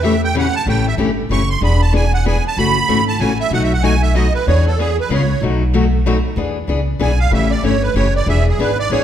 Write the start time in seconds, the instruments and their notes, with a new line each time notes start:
Already playing: upright bass E2
0.03 steel-string acoustic guitar C#3 E3 A3 C#4 G4, accordion E5
0.24 accordion G5
0.35 steel-string acoustic guitar C#3 E3 A3 C#4 G4, accordion F#5
0.56 accordion A5
0.66 upright bass A1, steel-string acoustic guitar C#3 E3 A3 C#4 G4, accordion G5
0.88 accordion E5
0.97 upright bass G1, steel-string acoustic guitar C#3 E3 A3 C#4 G4
1.29 upright bass F#1, steel-string acoustic guitar C#3 E3 A3 C#4 G4, accordion C#6
1.50 accordion C6
1.61 upright bass E1, steel-string acoustic guitar E3 B3 D4 G#4, accordion B5
1.81 accordion A5
1.93 steel-string acoustic guitar E3 B3 D4 G#4, accordion G#5
2.14 accordion F#5
2.25 steel-string acoustic guitar E3 B3 D4 G#4, accordion G#5
2.47 accordion A5
2.57 upright bass F#1, steel-string acoustic guitar C#3 E3 A3 C#4 F#4, accordion B5
2.88 upright bass G#1, steel-string acoustic guitar C#3 E3 A3 C#4 F#4
3.08 accordion A5
3.19 upright bass A1, steel-string acoustic guitar C#3 E3 A3 C#4 F#4, accordion G#5
3.40 accordion E5
3.51 upright bass B1, steel-string acoustic guitar B2 F#3 A3 D#4 F#4, accordion F#5
3.63 accordion E5
3.73 accordion F#5
3.83 steel-string acoustic guitar B2 F#3 A3 D#4 F#4, accordion G#5
4.03 accordion E5
4.15 steel-string acoustic guitar B2 F#3 A3 D#4 F#4, accordion D#5
4.34 accordion B4
4.47 upright bass E2, steel-string acoustic guitar E3 B3 D4 G#4, accordion C#5
4.67 accordion A4
4.79 steel-string acoustic guitar E3 B3 D4 G#4, accordion G#4
5.00 accordion B4
5.09 upright bass C#2, steel-string acoustic guitar C#3 G#3 B3 F4 G#4
5.13 accordion C#5
5.41 upright bass B1, steel-string acoustic guitar B2 F#3 A3 D#4 F#4
5.74 steel-string acoustic guitar B2 F#3 A3 D#4 F#4
6.06 steel-string acoustic guitar B2 F#3 A3 D#4 F#4
6.36 upright bass E2, steel-string acoustic guitar E3 B3 D4 G#4
6.67 upright bass C#2, steel-string acoustic guitar E3 B3 D4 G#4
6.99 upright bass B1, steel-string acoustic guitar E3 B3 D4 G#4, accordion G#5
7.20 accordion F5
7.31 upright bass A1, steel-string acoustic guitar C#3 E3 A3 C#4 G4, accordion E5
7.51 accordion D5
7.63 upright bass G1, steel-string acoustic guitar C#3 E3 A3 C#4 G4, accordion C#5
7.82 accordion B4
7.94 upright bass F#1, steel-string acoustic guitar C#3 E3 A3 C#4 G4, accordion C#5
8.16 accordion D5
8.26 upright bass E1, steel-string acoustic guitar E3 B3 D4 G#4, accordion E5
8.49 accordion G#4
8.58 upright bass G#1, steel-string acoustic guitar E3 B3 D4 G#4, accordion B4
8.79 accordion D5
8.90 upright bass A1, steel-string acoustic guitar E3 B3 D4 G#4, accordion C#5